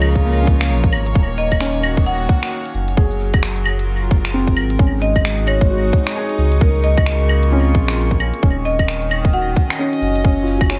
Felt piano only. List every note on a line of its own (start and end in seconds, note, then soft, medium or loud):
0.00 0.98 F3 medium
0.00 0.25 A#3 medium
0.25 1.34 A#3 medium
0.43 1.50 C#4 medium
1.60 2.80 C#4 medium
2.97 4.16 G#4 medium
4.34 4.98 C4 medium
4.80 5.98 C#4 medium
5.71 6.80 F#4 medium
6.16 6.80 G#4 medium
6.61 7.80 A#4 medium
7.52 8.62 C4 medium
7.52 8.41 C#4 medium
8.43 9.62 C#4 medium
9.33 10.43 F#4 medium
9.79 10.23 C#4 medium
10.24 10.68 C#4 medium
10.43 10.79 F4 medium
10.57 10.79 F#4 medium
10.70 10.79 C#4 medium